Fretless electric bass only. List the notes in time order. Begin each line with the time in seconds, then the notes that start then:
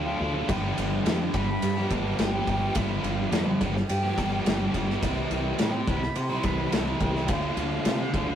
Already playing: D2
0.21 D2
0.49 G1
0.77 G1
1.05 F2
1.34 G1
1.63 G2
1.91 G1
2.19 G1
2.47 G1
2.76 G1
3.03 G1
3.32 F2
3.61 G1
3.90 G2
4.18 G1
4.45 G1
4.75 G1
5.03 C2
5.31 C2
5.60 A2
5.87 C2
6.16 C3
6.44 C2
6.73 C2
7.01 C2
7.29 D2
7.57 D2
7.86 C3
8.14 D2